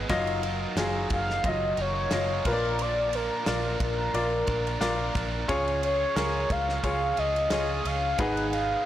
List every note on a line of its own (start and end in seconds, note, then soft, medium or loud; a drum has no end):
0.00 2.42 D#3 medium
0.00 0.12 D#4 medium
0.00 0.12 G#4 medium
0.00 0.12 B4 medium
0.00 0.12 A#5 medium
0.09 0.65 F#1 medium
0.09 0.43 F#3 medium
0.09 0.60 F#3 loud
0.09 2.44 F#3 medium
0.09 5.46 A#3 medium
0.09 0.44 D#4 medium
0.09 2.44 D#4 medium
0.09 0.60 F4 loud
0.09 0.43 F4 medium
0.09 8.16 F4 medium
0.09 0.41 A#4 medium
0.09 0.60 D#5 loud
0.09 kick loud
0.09 ride medium
0.27 ride soft
0.42 0.76 D#4 soft
0.42 0.77 F4 soft
0.42 0.77 A#4 medium
0.42 ride medium
0.76 1.04 F#1 medium
0.76 1.78 F#3 medium
0.76 1.28 F#3 medium
0.76 1.79 D#4 medium
0.76 1.28 F4 medium
0.76 1.78 F4 medium
0.76 1.28 G#4 medium
0.76 1.77 A#4 medium
0.76 snare loud
0.76 ride medium
1.10 1.38 F#1 loud
1.10 1.50 F5 loud
1.10 kick medium
1.10 ride medium
1.30 snare soft
1.44 1.72 F#1 medium
1.44 1.95 F#3 medium
1.44 1.96 F4 medium
1.44 1.96 D#5 medium
1.44 kick medium
1.44 ride medium
1.48 1.82 D#5 loud
1.77 2.06 F#1 loud
1.77 2.11 D#4 medium
1.77 2.12 F4 medium
1.77 2.12 A#4 medium
1.77 2.46 C#5 loud
1.77 ride soft
2.11 2.39 F#1 loud
2.11 2.45 F#3 medium
2.11 2.46 F#3 medium
2.11 2.46 D#4 medium
2.11 2.45 F4 medium
2.11 2.43 A#4 medium
2.11 2.46 D#5 medium
2.11 snare loud
2.11 ride medium
2.45 3.28 A#1 medium
2.45 3.43 A#2 medium
2.45 5.47 D3 medium
2.45 5.47 F3 medium
2.45 2.78 A#3 medium
2.45 2.78 D4 medium
2.45 2.78 F4 medium
2.45 3.29 F4 medium
2.45 2.79 A#4 medium
2.45 5.47 A#4 medium
2.45 3.29 A#4 medium
2.45 2.83 A#4 medium
2.45 2.54 B4 medium
2.45 kick loud
2.45 crash medium
2.53 3.32 D5 medium
2.78 3.12 A#2 medium
2.78 3.13 F3 medium
2.78 3.13 A#3 medium
2.78 3.12 D4 medium
2.78 3.11 F4 medium
2.78 3.10 A#4 medium
2.78 3.14 D5 loud
2.78 ride medium
3.12 3.43 A#3 soft
3.12 3.44 D4 soft
3.12 3.46 F4 soft
3.12 3.46 A#4 medium
3.12 3.78 A#4 medium
3.12 ride medium
3.45 3.75 A#1 medium
3.45 4.47 A#3 medium
3.45 4.47 D4 medium
3.45 4.47 F4 medium
3.45 3.97 F4 medium
3.45 3.98 A#4 medium
3.45 4.45 A#4 medium
3.45 3.98 D5 medium
3.45 snare loud
3.45 ride medium
3.80 4.08 A#1 loud
3.80 5.12 A#4 medium
3.80 kick medium
3.80 ride medium
4.14 4.42 A#1 medium
4.14 4.65 F4 medium
4.14 4.65 A#4 medium
4.14 4.65 D5 medium
4.14 ride medium
4.46 4.75 A#1 medium
4.46 4.79 A#3 soft
4.46 4.80 D4 medium
4.46 4.80 F4 medium
4.46 4.81 A#4 medium
4.46 kick medium
4.46 ride soft
4.67 ride soft
4.80 5.09 A#1 medium
4.80 5.15 A#3 medium
4.80 5.14 D4 medium
4.80 5.32 F4 medium
4.80 5.13 F4 medium
4.80 5.32 A#4 medium
4.80 5.13 A#4 medium
4.80 5.32 D5 medium
4.80 snare loud
4.80 ride medium
5.14 5.43 A#1 medium
5.14 5.48 A#3 medium
5.14 5.48 D4 medium
5.14 5.48 F4 medium
5.14 5.48 A#4 medium
5.14 kick loud
5.14 ride medium
5.48 6.04 C#2 medium
5.48 5.82 C#3 medium
5.48 6.46 C#3 medium
5.48 8.17 C#3 medium
5.48 8.16 F3 medium
5.48 5.83 G#3 medium
5.48 8.16 G#3 medium
5.48 5.83 C#4 medium
5.48 5.99 F4 medium
5.48 5.82 F4 medium
5.48 5.99 G#4 medium
5.48 8.86 G#4 medium
5.48 5.80 G#4 medium
5.48 5.99 C#5 loud
5.48 5.82 C#5 medium
5.48 kick loud
5.48 ride medium
5.68 ride soft
5.81 6.14 C#4 soft
5.81 6.16 F4 medium
5.81 6.16 G#4 medium
5.81 6.53 C#5 medium
5.81 ride medium
6.15 6.44 C#2 medium
6.15 7.50 G#3 medium
6.15 7.17 C#4 medium
6.15 6.67 F4 medium
6.15 7.17 F4 medium
6.15 6.67 G#4 medium
6.15 7.16 G#4 medium
6.15 6.67 A#4 medium
6.15 snare loud
6.15 ride medium
6.50 6.78 C#2 medium
6.50 6.85 F5 loud
6.50 kick medium
6.50 ride medium
6.69 snare soft
6.83 7.11 C#2 medium
6.83 7.34 F4 medium
6.83 7.35 G#4 medium
6.83 7.35 C#5 medium
6.83 7.20 F5 loud
6.83 kick medium
6.83 ride medium
7.17 7.46 C#2 medium
7.17 7.50 C#4 medium
7.17 7.52 F4 medium
7.17 7.51 G#4 medium
7.17 7.88 D#5 loud
7.17 ride soft
7.36 ride soft
7.50 7.79 C#2 loud
7.50 7.85 G#3 medium
7.50 7.85 C#4 medium
7.50 8.02 F4 medium
7.50 7.84 F4 medium
7.50 8.02 G#4 medium
7.50 7.83 G#4 medium
7.50 8.02 C#5 medium
7.50 snare loud
7.50 ride medium
7.84 8.13 C#2 medium
7.84 8.20 C#4 medium
7.84 8.19 F4 medium
7.84 8.18 G#4 medium
7.84 8.22 F5 loud
7.84 ride medium
8.17 8.74 G#1 loud
8.17 8.53 G#2 medium
8.17 8.86 G#2 medium
8.17 8.86 B2 medium
8.17 8.86 D#3 medium
8.17 8.53 D#3 medium
8.17 8.86 G#3 medium
8.17 8.53 G#3 medium
8.17 8.53 B3 medium
8.17 8.86 D#4 medium
8.17 8.70 D#4 medium
8.17 8.53 D#4 medium
8.17 8.70 G#4 medium
8.17 8.51 G#4 loud
8.17 8.70 B4 medium
8.17 8.55 F#5 loud
8.17 kick loud
8.17 ride medium
8.37 ride soft
8.52 8.85 G#3 medium
8.52 8.86 B3 medium
8.52 8.86 D#4 medium
8.52 8.86 G#4 medium
8.52 8.86 F5 loud
8.52 ride medium